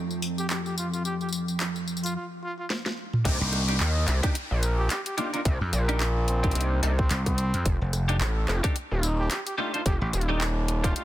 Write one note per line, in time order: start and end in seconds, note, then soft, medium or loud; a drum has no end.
0.00 2.15 F2 medium
0.00 2.15 A3 medium
0.00 2.15 C4 medium
0.00 2.15 D4 medium
0.00 2.15 D#4 medium
0.00 2.15 G4 medium
0.11 tambourine soft
0.22 tambourine medium
0.38 0.48 G4 medium
0.38 tambourine soft
0.50 0.60 G4 medium
0.50 clap loud
0.50 tambourine soft
0.65 0.73 G4 medium
0.65 tambourine soft
0.78 0.88 F4 medium
0.78 tambourine medium
0.93 1.01 F4 medium
0.93 tambourine soft
1.05 1.15 G4 medium
1.05 tambourine soft
1.21 1.28 G4 medium
1.21 tambourine soft
1.29 tambourine soft
1.33 tambourine medium
1.48 tambourine soft
1.60 clap loud
1.60 tambourine soft
1.76 tambourine soft
1.88 tambourine soft
1.97 tambourine soft
2.03 2.11 F4 medium
2.03 tambourine soft
2.06 tambourine medium
2.16 2.25 F4 medium
2.43 2.53 F4 medium
2.59 2.66 F4 medium
2.70 snare medium
2.86 snare medium
3.13 mid tom medium
3.25 3.38 C2 loud
3.25 3.62 A#3 loud
3.25 3.62 D4 medium
3.25 3.62 D#4 medium
3.25 3.62 G4 loud
3.25 kick loud
3.25 closed hi-hat medium
3.25 crash loud
3.25 downlifter medium
3.41 3.78 C2 loud
3.53 cross-stick soft
3.53 closed hi-hat medium
3.68 3.75 A#3 medium
3.68 3.75 D4 medium
3.68 3.75 D#4 medium
3.68 3.75 G4 medium
3.68 closed hi-hat soft
3.80 4.06 D#2 loud
3.80 clap loud
4.08 4.21 C2 loud
4.08 clap medium
4.08 closed hi-hat medium
4.23 4.34 A#3 medium
4.23 4.34 D4 medium
4.23 4.34 D#4 medium
4.23 4.35 G4 loud
4.23 kick loud
4.23 closed hi-hat medium
4.35 closed hi-hat medium
4.51 4.88 A#1 loud
4.63 closed hi-hat medium
4.63 tambourine medium
4.79 4.88 G4 medium
4.90 5.00 G4 medium
4.90 clap loud
4.90 closed hi-hat medium
5.06 5.13 G4 medium
5.06 closed hi-hat medium
5.17 5.31 A#3 medium
5.17 5.31 D4 medium
5.17 5.31 D#4 medium
5.17 5.28 F4 medium
5.17 5.31 G4 medium
5.17 closed hi-hat medium
5.33 5.41 A#3 medium
5.33 5.40 D4 medium
5.33 5.40 D#4 medium
5.33 5.41 F4 medium
5.33 5.40 A#4 medium
5.33 closed hi-hat soft
5.45 5.59 C2 loud
5.45 kick loud
5.45 closed hi-hat medium
5.61 5.71 F2 loud
5.73 6.54 A#1 loud
5.73 cross-stick soft
5.73 closed hi-hat medium
5.73 tambourine medium
5.88 6.00 A#3 medium
5.88 6.00 D4 medium
5.88 6.00 D#4 medium
5.88 6.00 G4 medium
5.88 closed hi-hat soft
6.00 clap loud
6.28 6.83 C4 loud
6.28 closed hi-hat medium
6.43 6.80 A#3 medium
6.43 6.80 D4 medium
6.43 6.80 D#4 medium
6.43 6.80 G4 medium
6.43 kick loud
6.43 closed hi-hat soft
6.51 6.81 C2 loud
6.51 closed hi-hat medium
6.55 closed hi-hat medium
6.61 closed hi-hat medium
6.83 7.09 C2 loud
6.83 6.92 A#3 medium
6.83 6.92 D4 medium
6.83 6.92 D#4 medium
6.83 6.92 A4 medium
6.83 closed hi-hat medium
6.83 tambourine medium
6.99 7.06 C4 medium
6.99 kick loud
7.10 7.51 C2 loud
7.10 7.21 C4 medium
7.10 clap loud
7.10 closed hi-hat medium
7.26 7.66 C4 loud
7.26 kick medium
7.26 cross-stick medium
7.26 closed hi-hat medium
7.38 closed hi-hat medium
7.54 7.64 F2 loud
7.54 closed hi-hat soft
7.66 7.79 F1 loud
7.66 kick loud
7.66 closed hi-hat medium
7.81 8.19 F1 loud
7.93 cross-stick soft
7.93 closed hi-hat medium
7.93 tambourine medium
8.08 8.16 A3 medium
8.08 8.16 D4 medium
8.08 8.16 D#4 medium
8.08 8.16 G4 medium
8.08 closed hi-hat soft
8.21 8.46 A1 loud
8.21 clap loud
8.48 8.61 F1 loud
8.48 clap medium
8.63 8.75 A3 medium
8.63 8.75 D4 medium
8.63 8.75 D#4 medium
8.63 8.75 G4 loud
8.63 kick loud
8.63 closed hi-hat medium
8.76 closed hi-hat medium
8.91 9.29 D#1 loud
9.03 closed hi-hat medium
9.03 tambourine medium
9.19 9.28 G4 medium
9.31 9.41 G4 medium
9.31 clap loud
9.31 closed hi-hat medium
9.47 9.54 G4 medium
9.47 closed hi-hat medium
9.58 9.72 A3 medium
9.58 9.72 D4 medium
9.58 9.72 D#4 medium
9.58 9.68 F4 medium
9.58 9.72 G4 loud
9.74 9.81 A3 medium
9.74 9.81 D4 medium
9.74 9.81 D#4 medium
9.74 9.81 F4 medium
9.74 9.81 C5 medium
9.74 closed hi-hat soft
9.86 9.99 F1 loud
9.86 9.96 G4 medium
9.86 kick loud
9.86 closed hi-hat medium
10.01 10.11 A1 loud
10.01 10.09 G4 medium
10.13 10.94 D#1 medium
10.13 cross-stick soft
10.13 closed hi-hat medium
10.13 tambourine medium
10.21 closed hi-hat soft
10.29 10.40 A3 medium
10.29 10.40 D4 medium
10.29 10.40 D#4 medium
10.29 10.40 G4 medium
10.41 clap loud
10.68 closed hi-hat medium
10.84 11.04 A3 medium
10.84 11.04 D4 medium
10.84 11.04 D#4 medium
10.84 10.91 F4 medium
10.84 11.04 G4 medium
10.84 kick loud
10.84 closed hi-hat medium
10.96 11.04 F4 medium
10.96 closed hi-hat medium